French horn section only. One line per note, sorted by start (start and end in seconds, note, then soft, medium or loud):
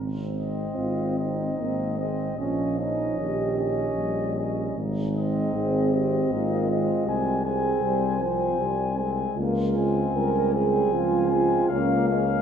0.00 0.73 C4 soft
0.76 1.17 F4 soft
1.18 1.59 D#4 soft
1.58 2.38 C4 soft
2.39 2.78 C#4 soft
2.79 3.19 D#4 soft
3.18 4.36 G4 soft
4.77 5.51 D#4 soft
5.55 5.93 G#4 soft
5.93 6.31 G4 soft
6.31 7.07 F4 medium
7.07 7.45 G4 medium
7.45 7.83 G#4 medium
7.82 8.98 C5 medium
9.36 10.11 F4 medium
10.16 10.53 A#4 medium
10.54 10.92 G#4 medium
10.93 11.69 F4 medium
11.71 12.42 C#4 medium